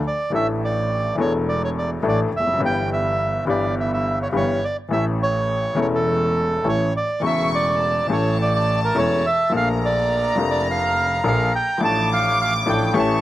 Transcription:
0.07 D5
0.30 A1 A2 E3 A3 D4 A4
0.35 E5
0.64 D5
1.15 E1 E2 E3 A3 D4
1.20 A4 C#5
1.49 D5
1.64 C#5
1.78 D5
2.02 A1 A2 E3 A3 D4 A4
2.08 D5
2.33 F1 E5
2.40 E2
2.47 F2
2.53 F#2
2.58 G1 G2 E3 G3 B3
2.63 G4 G5
2.93 E5
3.45 G1 G2 E3 G3 B3
3.49 G4 D5
3.80 E5
3.94 E5
4.23 C#5
4.32 G1 G2 E3 G3 B3 G4
4.36 C#5
4.64 D5
4.89 A1 A2 E3 A3 C#4 A4 E5
5.23 C#5
5.75 E1 E2 E3 A3 C#4 A4
5.81 C#5
5.95 A4
6.64 A1 A2 E3 A3 C#4 A4
6.69 C#5
6.97 D5
7.20 E1 E2 C#3 E3 A3 A4 C#6
7.26 E5
7.55 D5
7.79 A5
8.07 A1 A2 E3 A3 C#4
8.11 A4 C#5
8.42 D5
8.55 D5
8.85 A#4
8.95 E1 E2 E3 A3 C#4 A4 C#5
9.26 E5
9.50 A#1 A#2 F3 A#3 D4 A#5
9.54 A3 F5
9.85 D5
10.35 F1 F2 F3 A3 A#3 D4
10.51 D5
10.71 F5
11.24 A#1 A#2 F3 A#3 D4 A4 F5
11.56 G5
11.78 A1 A2 F3 A3 D4 D6
11.82 A1 A4 A5
12.13 F5
12.41 F5
12.66 A1 A2 F3 A3 D4 A4 G5
12.94 A1 A2 E3 A3 C#4 G4 C#6
12.99 A5

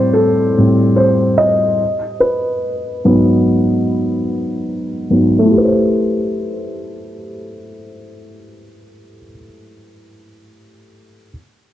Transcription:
Already playing: A2 G3 C4 C5 D5
0.13 A4
0.57 A2 G3 C4
0.96 C5
1.38 D#5
2.20 B4
3.04 G#2 F#3 B3
5.10 G#2 F#3 B3
5.39 A3
5.45 E4
5.51 G4
5.58 B4
5.64 C5

